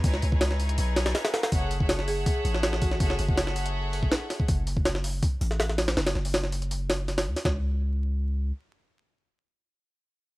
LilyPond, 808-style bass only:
\new Staff \with { instrumentName = "808-style bass" } { \clef bass \time 4/4 \key fis \dorian \tempo 4 = 162 cis,8 cis,4. b,,4 r4 | fis,,2 r8 a,,4. | fis,,8 fis,,2~ fis,,8 r4 | fis,,2 r8 a,,4. |
fis,,8 fis,,2. dis,8 | cis,2. r4 | r1 | }